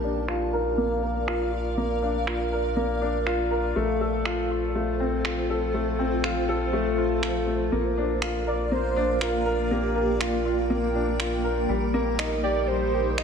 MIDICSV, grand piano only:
0, 0, Header, 1, 2, 480
1, 0, Start_track
1, 0, Key_signature, -2, "major"
1, 0, Tempo, 495868
1, 1718, Time_signature, 4, 2, 24, 8
1, 12811, End_track
2, 0, Start_track
2, 0, Title_t, "Grand piano"
2, 0, Program_c, 0, 0
2, 0, Control_c, 0, 64, 127
2, 35, Note_on_c, 0, 62, 69
2, 264, Note_off_c, 0, 62, 0
2, 272, Note_on_c, 0, 65, 71
2, 503, Note_off_c, 0, 65, 0
2, 514, Note_on_c, 0, 70, 76
2, 653, Note_off_c, 0, 70, 0
2, 753, Note_on_c, 0, 58, 74
2, 984, Note_off_c, 0, 58, 0
2, 995, Note_on_c, 0, 70, 54
2, 1133, Note_off_c, 0, 70, 0
2, 1234, Note_on_c, 0, 65, 82
2, 1459, Note_off_c, 0, 65, 0
2, 1473, Note_on_c, 0, 65, 57
2, 1612, Note_off_c, 0, 65, 0
2, 1717, Note_on_c, 0, 58, 64
2, 1945, Note_off_c, 0, 58, 0
2, 1957, Note_on_c, 0, 62, 57
2, 2185, Note_off_c, 0, 62, 0
2, 2194, Note_on_c, 0, 65, 59
2, 2424, Note_off_c, 0, 65, 0
2, 2439, Note_on_c, 0, 70, 58
2, 2575, Note_off_c, 0, 70, 0
2, 2676, Note_on_c, 0, 58, 67
2, 2814, Note_off_c, 0, 58, 0
2, 2919, Note_on_c, 0, 62, 71
2, 3146, Note_off_c, 0, 62, 0
2, 3158, Note_on_c, 0, 65, 84
2, 3386, Note_off_c, 0, 65, 0
2, 3398, Note_on_c, 0, 70, 76
2, 3535, Note_off_c, 0, 70, 0
2, 3639, Note_on_c, 0, 57, 82
2, 3649, Control_c, 0, 64, 0
2, 3840, Control_c, 0, 64, 127
2, 3866, Note_off_c, 0, 57, 0
2, 3879, Note_on_c, 0, 69, 60
2, 4015, Note_off_c, 0, 69, 0
2, 4120, Note_on_c, 0, 65, 79
2, 4347, Note_off_c, 0, 65, 0
2, 4361, Note_on_c, 0, 65, 58
2, 4496, Note_off_c, 0, 65, 0
2, 4600, Note_on_c, 0, 57, 62
2, 4827, Note_off_c, 0, 57, 0
2, 4838, Note_on_c, 0, 60, 56
2, 5066, Note_off_c, 0, 60, 0
2, 5080, Note_on_c, 0, 65, 62
2, 5307, Note_off_c, 0, 65, 0
2, 5321, Note_on_c, 0, 69, 57
2, 5456, Note_off_c, 0, 69, 0
2, 5556, Note_on_c, 0, 57, 67
2, 5694, Note_off_c, 0, 57, 0
2, 5798, Note_on_c, 0, 60, 69
2, 6026, Note_off_c, 0, 60, 0
2, 6036, Note_on_c, 0, 65, 80
2, 6265, Note_off_c, 0, 65, 0
2, 6278, Note_on_c, 0, 69, 76
2, 6415, Note_off_c, 0, 69, 0
2, 6515, Note_on_c, 0, 57, 77
2, 6745, Note_off_c, 0, 57, 0
2, 6758, Note_on_c, 0, 65, 53
2, 6980, Note_off_c, 0, 65, 0
2, 6994, Note_on_c, 0, 65, 60
2, 7224, Note_off_c, 0, 65, 0
2, 7233, Note_on_c, 0, 57, 52
2, 7463, Note_off_c, 0, 57, 0
2, 7475, Note_on_c, 0, 58, 66
2, 7489, Control_c, 0, 64, 0
2, 7681, Control_c, 0, 64, 127
2, 7704, Note_off_c, 0, 58, 0
2, 7720, Note_on_c, 0, 62, 58
2, 7947, Note_off_c, 0, 62, 0
2, 7956, Note_on_c, 0, 65, 60
2, 8185, Note_off_c, 0, 65, 0
2, 8198, Note_on_c, 0, 70, 57
2, 8334, Note_off_c, 0, 70, 0
2, 8436, Note_on_c, 0, 58, 64
2, 8574, Note_off_c, 0, 58, 0
2, 8677, Note_on_c, 0, 62, 73
2, 8905, Note_off_c, 0, 62, 0
2, 8918, Note_on_c, 0, 65, 81
2, 9146, Note_off_c, 0, 65, 0
2, 9156, Note_on_c, 0, 70, 75
2, 9293, Note_off_c, 0, 70, 0
2, 9400, Note_on_c, 0, 58, 64
2, 9627, Note_off_c, 0, 58, 0
2, 9638, Note_on_c, 0, 70, 59
2, 9775, Note_off_c, 0, 70, 0
2, 9876, Note_on_c, 0, 65, 80
2, 10104, Note_off_c, 0, 65, 0
2, 10118, Note_on_c, 0, 65, 64
2, 10255, Note_off_c, 0, 65, 0
2, 10358, Note_on_c, 0, 58, 66
2, 10586, Note_off_c, 0, 58, 0
2, 10598, Note_on_c, 0, 62, 61
2, 10826, Note_off_c, 0, 62, 0
2, 10836, Note_on_c, 0, 65, 65
2, 11065, Note_off_c, 0, 65, 0
2, 11076, Note_on_c, 0, 70, 59
2, 11214, Note_off_c, 0, 70, 0
2, 11317, Note_on_c, 0, 55, 69
2, 11332, Control_c, 0, 64, 0
2, 11454, Note_off_c, 0, 55, 0
2, 11480, Control_c, 0, 64, 127
2, 11558, Note_on_c, 0, 58, 79
2, 11786, Note_off_c, 0, 58, 0
2, 11796, Note_on_c, 0, 63, 80
2, 12025, Note_off_c, 0, 63, 0
2, 12038, Note_on_c, 0, 67, 82
2, 12175, Note_off_c, 0, 67, 0
2, 12277, Note_on_c, 0, 55, 65
2, 12506, Note_off_c, 0, 55, 0
2, 12520, Note_on_c, 0, 67, 55
2, 12656, Note_off_c, 0, 67, 0
2, 12757, Note_on_c, 0, 63, 84
2, 12811, Note_off_c, 0, 63, 0
2, 12811, End_track
0, 0, End_of_file